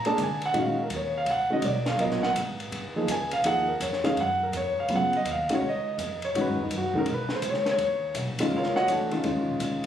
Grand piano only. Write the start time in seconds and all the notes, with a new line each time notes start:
0.06 G#3 A#3 D4 G#4 A5
0.23 G#5
0.46 F#5
0.54 D#3 G#3 C#4 F#4
0.59 F5
0.83 A#4
0.96 C#5
1.18 F5
1.31 F#5
1.50 D#3 G#3 C#4 F#4 D#5
1.65 D5
1.88 F5
1.99 F#3 B3 F4 A#4 D#5
2.23 F#5
2.96 F3 A#3 D#4 G#4
3.11 G#5
3.33 F5
3.45 F3 A#3 D#4 G#4 F#5
3.68 A#4
3.82 C#5
4.04 D#3 G#3 C#4 G#4 F5
4.20 F#5
4.43 A#4
4.57 C#5
4.80 F5
4.89 C#3 F#3 B3 F4
4.96 F#5
5.17 D#5
5.31 F5
5.50 D#3 G#3 C#4 F#4
5.55 C#5
5.69 D#5
6.25 C#5
6.36 D#3 G#3 C#4 F#4
6.41 B4
6.63 D#4
6.78 F#4
6.95 D#3 G#3 C#4 D#4 A#4
7.14 B4
7.35 C5
7.50 C#5
7.71 C#5
8.40 D#3 G#3 C#4 F4
8.56 F4 A#4 C#5 F5
8.76 F#4 C#5 D#5 F#5
8.88 E3 A3 D4 F#4
9.11 D#3 G#3 C#4 F4
9.24 D#3 G#3 C#4 F4